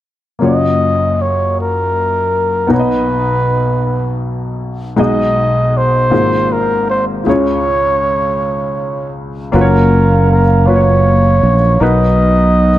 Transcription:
0.39 F#1 F#2 A#3 C#4 F4
0.43 F#4 C#5 D#5
1.22 C#5
1.60 A#4
2.67 B1 B2 B3 D#4 F#4
2.71 B4 C#5 A#5
2.79 D#5
4.96 B1 B2 G#3 D#4 F#4 G#4 D#5
5.77 C5
6.10 G#1 G#2 A#3 F4 F#4 G#4 C5
6.53 A#4
6.90 C5
7.24 C#2 C#3 E4 G#4
7.29 F4 C#5
9.52 F#1 F#3 A#3 C#4 F4 F#4 A#4 B4 F5
9.61 C#5
10.31 A#4
10.66 A#3 C#4 F4 F#4 B4 C#5
10.75 C#5
11.43 A#1
11.80 B1 B2 B3 D#4 F#4 A#4 B4 D#5

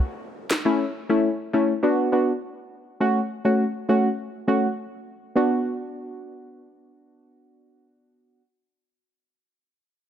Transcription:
Already playing: downlifter
0.51 snare, clap
0.65 A3 C#4 E4
1.09 A3 C#4 E4
1.53 A3 C#4 E4
1.83 B3 D4 F#4
2.12 B3 D4 F#4
3.00 A3 C#4 F#4
3.45 A3 C#4 F#4
3.89 A3 C#4 F#4
4.47 A3 C#4 F#4
5.35 B3 D4 F#4

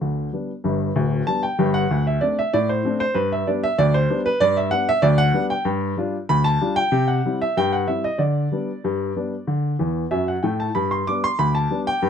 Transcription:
Already playing: B4
0.01 D2 D3
0.33 G3 B3 D4
0.64 G1 G2
0.96 D1 D2
1.27 G3 B3 D4 A5
1.43 G5
1.59 G1 G2
1.74 F#5
1.91 D2
2.07 E5
2.21 A3 C4 D4 D5
2.39 E5
2.53 A2 D5
2.69 C5
2.85 A3 C4 D4
3.00 C5
3.14 G2 B4
3.32 E5
3.47 G3 B3 D4 D5
3.63 E5
3.78 D2 D5
3.94 C5
4.10 G3 B3 D4
4.26 B4
4.40 G2 D5
4.57 E5
4.71 G3 B3 D4 F#5
4.89 E5
5.02 D2 D5
5.18 F#5
5.33 G3 B3 D4
5.50 G5
5.65 G2
5.97 G3 D4 F4
6.29 D2 B5
6.44 A5
6.61 G3 D4 F4
6.76 G5
6.92 C3
7.08 F#5
7.25 G3 C4 E4
7.42 E5
7.57 G2 G5
7.73 F#5
7.88 G3 C4 E4 E5
8.04 D#5
8.18 D3 D5
8.52 G3 B3 D4
8.84 G2
9.16 G3 B3 D4
9.47 D3
9.79 E2 E3
10.11 F#2 F#3 E5
10.28 F#5
10.43 A2 A3 G5
10.60 A5
10.75 G2 B5
10.91 C6
11.07 G3 B3 D4 D6
11.24 C6
11.39 D2 B5
11.55 A5
11.70 G3 B3 D4
11.87 G5
12.02 G2

